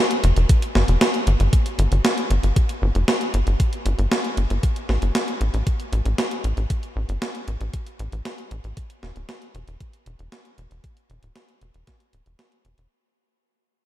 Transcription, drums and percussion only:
0.11 closed hi-hat soft
0.24 closed hi-hat medium
0.37 closed hi-hat soft
0.49 kick loud
0.49 closed hi-hat medium
0.62 closed hi-hat soft
0.75 snare medium
0.88 closed hi-hat soft
1.01 snare loud
1.01 closed hi-hat medium
1.14 closed hi-hat soft
1.27 closed hi-hat medium
1.40 closed hi-hat soft
1.53 kick loud
1.53 closed hi-hat medium
1.66 closed hi-hat soft
1.79 closed hi-hat medium
1.92 closed hi-hat soft
2.05 snare loud
2.05 closed hi-hat medium
2.18 closed hi-hat soft
2.31 closed hi-hat medium
2.43 closed hi-hat soft
2.56 kick loud
2.56 closed hi-hat medium
2.69 closed hi-hat soft
2.95 closed hi-hat soft
3.08 snare loud
3.08 closed hi-hat medium
3.21 closed hi-hat soft
3.34 closed hi-hat medium
3.47 closed hi-hat soft
3.60 kick loud
3.60 closed hi-hat medium
3.73 closed hi-hat soft
3.86 closed hi-hat medium
3.99 closed hi-hat soft
4.12 snare loud
4.12 closed hi-hat medium
4.24 closed hi-hat soft
4.37 closed hi-hat medium
4.50 closed hi-hat soft
4.63 kick loud
4.63 closed hi-hat medium
4.76 closed hi-hat soft
4.89 snare medium
5.02 closed hi-hat soft
5.15 snare loud
5.15 closed hi-hat medium
5.28 closed hi-hat soft
5.41 closed hi-hat medium
5.54 closed hi-hat soft
5.67 kick loud
5.67 closed hi-hat medium
5.80 closed hi-hat soft
5.93 closed hi-hat medium
6.05 closed hi-hat soft
6.18 snare loud
6.18 closed hi-hat medium
6.31 closed hi-hat soft
6.44 closed hi-hat medium
6.57 closed hi-hat soft
6.70 kick loud
6.70 closed hi-hat medium
6.83 closed hi-hat soft
7.09 closed hi-hat soft
7.22 snare loud
7.22 closed hi-hat medium
7.35 closed hi-hat soft
7.48 closed hi-hat medium
7.61 closed hi-hat soft
7.74 kick loud
7.74 closed hi-hat medium
7.87 closed hi-hat soft
7.99 closed hi-hat medium
8.12 closed hi-hat soft
8.25 snare loud
8.25 closed hi-hat medium
8.38 closed hi-hat soft
8.51 closed hi-hat medium
8.64 closed hi-hat soft
8.77 kick loud
8.77 closed hi-hat medium
8.90 closed hi-hat soft
9.03 snare medium
9.16 closed hi-hat soft
9.29 snare loud
9.29 closed hi-hat medium
9.42 closed hi-hat soft
9.55 closed hi-hat medium
9.68 closed hi-hat soft
9.80 kick loud
9.80 closed hi-hat medium
9.93 closed hi-hat soft
10.06 closed hi-hat medium
10.19 closed hi-hat soft
10.32 snare loud
10.32 closed hi-hat medium
10.45 closed hi-hat soft
10.58 closed hi-hat medium
10.71 closed hi-hat soft
10.84 kick loud
10.84 closed hi-hat medium
10.97 closed hi-hat soft
11.10 closed hi-hat soft
11.23 closed hi-hat soft
11.36 snare loud
11.36 closed hi-hat medium
11.49 closed hi-hat soft
11.61 closed hi-hat medium
11.74 closed hi-hat soft
11.87 kick loud
11.87 snare medium
11.87 closed hi-hat medium
12.00 closed hi-hat soft
12.13 closed hi-hat medium
12.26 closed hi-hat soft
12.39 snare loud
12.39 closed hi-hat medium
12.52 closed hi-hat soft
12.65 closed hi-hat medium
12.78 closed hi-hat soft

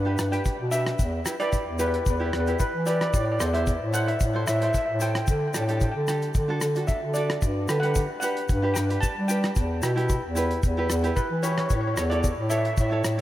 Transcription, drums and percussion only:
0.18 cross-stick medium
0.18 closed hi-hat medium
0.18 shaker medium
0.33 closed hi-hat medium
0.33 shaker soft
0.45 kick medium
0.45 closed hi-hat medium
0.45 shaker medium
0.72 closed hi-hat medium
0.72 shaker medium
0.86 cross-stick medium
0.86 closed hi-hat medium
0.86 shaker soft
0.99 kick medium
0.99 closed hi-hat medium
0.99 shaker medium
1.26 cross-stick medium
1.26 closed hi-hat medium
1.26 shaker medium
1.40 closed hi-hat medium
1.52 kick medium
1.52 closed hi-hat medium
1.52 shaker medium
1.79 closed hi-hat medium
1.79 shaker medium
1.94 closed hi-hat medium
2.06 kick medium
2.06 closed hi-hat medium
2.06 shaker medium
2.33 cross-stick medium
2.33 closed hi-hat medium
2.47 closed hi-hat medium
2.47 shaker soft
2.60 kick medium
2.60 closed hi-hat medium
2.60 shaker medium
2.86 closed hi-hat medium
2.86 shaker medium
3.01 cross-stick medium
3.01 closed hi-hat medium
3.01 shaker soft
3.13 kick loud
3.13 closed hi-hat soft
3.13 shaker medium
3.40 cross-stick medium
3.40 closed hi-hat medium
3.40 shaker medium
3.54 closed hi-hat medium
3.67 kick medium
3.67 closed hi-hat medium
3.67 shaker medium
3.94 closed hi-hat medium
3.94 shaker medium
4.08 closed hi-hat medium
4.20 kick medium
4.20 closed hi-hat medium
4.20 shaker medium
4.47 cross-stick medium
4.47 closed hi-hat medium
4.47 shaker medium
4.61 closed hi-hat medium
4.61 shaker soft
4.74 kick medium
4.74 closed hi-hat medium
4.74 shaker medium
5.00 closed hi-hat medium
5.00 shaker medium
5.15 cross-stick medium
5.15 closed hi-hat medium
5.15 shaker soft
5.27 kick loud
5.27 closed hi-hat medium
5.27 shaker medium
5.54 cross-stick medium
5.54 closed hi-hat medium
5.54 shaker medium
5.69 closed hi-hat medium
5.69 shaker soft
5.81 kick medium
5.81 closed hi-hat medium
5.81 shaker medium
6.08 cross-stick medium
6.08 closed hi-hat medium
6.08 shaker medium
6.22 closed hi-hat soft
6.22 shaker soft
6.34 kick medium
6.34 closed hi-hat medium
6.34 shaker medium
6.61 cross-stick medium
6.61 closed hi-hat medium
6.61 shaker medium
6.75 closed hi-hat medium
6.75 shaker soft
6.88 kick medium
6.88 closed hi-hat medium
6.88 shaker medium
7.14 closed hi-hat medium
7.14 shaker medium
7.30 cross-stick medium
7.30 closed hi-hat medium
7.42 kick medium
7.42 closed hi-hat soft
7.42 shaker medium
7.68 cross-stick medium
7.68 closed hi-hat medium
7.68 shaker medium
7.83 closed hi-hat medium
7.95 kick medium
7.95 closed hi-hat medium
7.95 shaker medium
8.22 closed hi-hat medium
8.22 shaker medium
8.37 closed hi-hat medium
8.49 kick loud
8.49 closed hi-hat medium
8.49 shaker medium
8.76 cross-stick medium
8.76 closed hi-hat medium
8.76 shaker medium
8.90 closed hi-hat medium
8.90 shaker soft
9.03 kick medium
9.03 closed hi-hat medium
9.03 shaker medium
9.29 closed hi-hat medium
9.29 shaker medium
9.43 cross-stick medium
9.43 closed hi-hat medium
9.43 shaker soft
9.56 kick medium
9.56 closed hi-hat medium
9.56 shaker medium
9.82 cross-stick medium
9.82 closed hi-hat medium
9.82 shaker medium
9.97 closed hi-hat medium
10.09 kick medium
10.09 closed hi-hat medium
10.09 shaker medium
10.36 closed hi-hat medium
10.36 shaker medium
10.51 closed hi-hat medium
10.63 kick loud
10.63 closed hi-hat medium
10.63 shaker medium
10.90 cross-stick medium
10.90 closed hi-hat medium
10.90 shaker medium
11.04 closed hi-hat medium
11.04 shaker soft
11.16 kick medium
11.16 closed hi-hat soft
11.16 shaker medium
11.43 closed hi-hat medium
11.43 shaker medium
11.58 cross-stick medium
11.58 closed hi-hat medium
11.70 kick medium
11.70 closed hi-hat medium
11.70 shaker medium
11.97 cross-stick medium
11.97 closed hi-hat medium
11.97 shaker medium
12.11 closed hi-hat medium
12.24 kick medium
12.24 closed hi-hat medium
12.24 shaker medium
12.50 closed hi-hat medium
12.50 shaker medium
12.65 closed hi-hat medium
12.77 kick loud
12.77 closed hi-hat medium
12.77 shaker medium
13.04 cross-stick medium
13.04 closed hi-hat medium
13.04 shaker medium

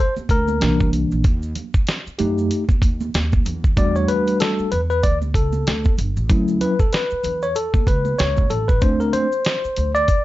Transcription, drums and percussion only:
0.17 high conga medium
0.17 maracas soft
0.29 kick medium
0.29 closed hi-hat medium
0.29 maracas soft
0.48 high conga medium
0.48 maracas medium
0.61 snare loud
0.61 closed hi-hat medium
0.61 maracas medium
0.80 kick medium
0.80 high conga medium
0.80 maracas soft
0.93 closed hi-hat medium
0.93 low conga medium
0.93 maracas soft
1.11 maracas soft
1.24 kick loud
1.24 closed hi-hat medium
1.24 maracas medium
1.43 maracas soft
1.55 closed hi-hat medium
1.55 high conga soft
1.55 low conga medium
1.55 maracas soft
1.74 kick medium
1.74 maracas soft
1.87 snare loud
1.87 closed hi-hat loud
1.87 maracas medium
2.07 maracas soft
2.19 closed hi-hat medium
2.19 low conga medium
2.19 maracas soft
2.38 maracas soft
2.51 closed hi-hat medium
2.51 maracas medium
2.69 kick medium
2.69 high conga medium
2.69 maracas soft
2.82 kick medium
2.82 closed hi-hat medium
2.82 maracas soft
3.01 high conga medium
3.01 maracas soft
3.14 snare loud
3.14 closed hi-hat loud
3.14 maracas medium
3.32 kick medium
3.32 high conga medium
3.32 maracas soft
3.45 closed hi-hat medium
3.45 low conga medium
3.45 maracas soft
3.64 kick medium
3.64 maracas soft
3.77 kick loud
3.77 closed hi-hat medium
3.77 maracas medium
3.96 maracas soft
4.08 closed hi-hat medium
4.08 high conga soft
4.08 low conga soft
4.08 maracas soft
4.27 closed hi-hat soft
4.27 maracas soft
4.40 snare loud
4.40 closed hi-hat medium
4.40 maracas medium
4.59 maracas soft
4.72 closed hi-hat medium
4.72 low conga medium
4.72 maracas soft
4.90 maracas soft
5.03 kick medium
5.03 closed hi-hat medium
5.03 maracas medium
5.22 high conga medium
5.22 maracas soft
5.34 kick medium
5.34 closed hi-hat medium
5.34 maracas soft
5.52 high conga medium
5.52 maracas medium
5.67 snare loud
5.67 closed hi-hat loud
5.67 maracas medium
5.85 kick medium
5.85 high conga medium
5.85 maracas soft
5.98 closed hi-hat medium
5.98 low conga medium
5.98 maracas soft
6.17 maracas soft
6.30 kick loud
6.30 closed hi-hat medium
6.30 maracas medium
6.48 maracas soft
6.61 closed hi-hat medium
6.61 high conga soft
6.61 low conga medium
6.61 maracas soft
6.79 kick medium
6.79 maracas medium
6.93 snare loud
6.93 closed hi-hat loud
6.93 maracas medium
7.11 maracas soft
7.24 closed hi-hat medium
7.24 low conga medium
7.24 maracas soft
7.42 maracas soft
7.55 closed hi-hat medium
7.55 maracas medium
7.74 kick medium
7.74 high conga medium
7.74 maracas soft
7.87 kick loud
7.87 closed hi-hat medium
7.87 maracas soft
8.05 high conga medium
8.05 maracas soft
8.19 snare loud
8.19 closed hi-hat medium
8.19 maracas medium
8.37 kick medium
8.37 high conga medium
8.37 maracas soft
8.50 closed hi-hat medium
8.50 low conga medium
8.50 maracas soft
8.69 kick medium
8.69 maracas soft
8.81 kick loud
8.81 closed hi-hat medium
8.81 maracas medium
9.00 maracas soft
9.13 closed hi-hat medium
9.13 high conga soft
9.13 low conga medium
9.13 maracas soft
9.32 maracas soft
9.45 snare loud
9.45 closed hi-hat loud
9.45 maracas medium
9.64 maracas soft
9.76 closed hi-hat medium
9.76 low conga medium
9.76 maracas soft
9.95 maracas soft
10.08 kick medium
10.08 closed hi-hat medium
10.08 maracas medium

